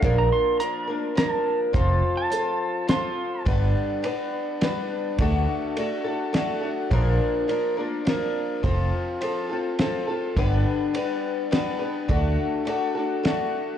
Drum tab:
RD |------|------|x-x-x-|x-x-x-|
HH |x-x-x-|x-x-x-|------|------|
SD |----o-|----o-|----o-|----o-|
BD |o-----|o-----|o-----|o-----|

RD |x-x-x-|x-x-x-|x-x-x-|x-x-x-|
HH |------|------|------|------|
SD |----o-|----o-|----o-|----o-|
BD |o-----|o-----|o-----|o-----|